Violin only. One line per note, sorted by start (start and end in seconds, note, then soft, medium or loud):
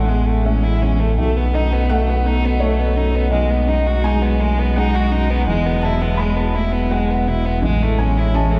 0.08 0.28 G#3 medium
0.26 0.47 A3 medium
0.46 0.66 C#4 medium
0.64 0.84 E4 medium
0.83 1.01 C#4 medium
1.00 1.18 A3 medium
1.18 1.38 A3 medium
1.37 1.56 B3 medium
1.55 1.75 D#4 medium
1.74 1.93 B3 medium
1.92 2.11 A3 medium
2.10 2.28 B3 medium
2.27 2.47 D#4 medium
2.45 2.64 B3 medium
2.63 2.81 A3 medium
2.80 2.98 B3 medium
2.97 3.17 D#4 medium
3.15 3.32 B3 medium
3.32 3.53 G#3 medium
3.51 3.70 B3 medium
3.68 3.88 D#4 medium
3.87 4.08 F#4 medium
4.06 4.24 D#4 medium
4.22 4.42 B3 medium
4.40 4.61 G#3 medium
4.59 4.79 B3 medium
4.77 4.96 D#4 medium
4.95 5.14 F#4 medium
5.12 5.32 D#4 medium
5.31 5.47 B3 medium
5.48 5.68 G#3 medium
5.67 5.86 B3 medium
5.85 6.03 E4 medium
6.02 6.21 B3 medium
6.20 6.38 G#3 medium
6.37 6.57 B3 medium
6.55 6.74 E4 medium
6.73 6.93 B3 medium
6.92 7.12 G#3 medium
7.11 7.29 B3 medium
7.28 7.47 E4 medium
7.46 7.63 B3 medium
7.64 7.84 G#3 medium
7.83 8.01 A3 medium
7.99 8.20 C#4 medium
8.18 8.36 E4 medium
8.35 8.53 C#4 medium
8.51 8.60 A3 medium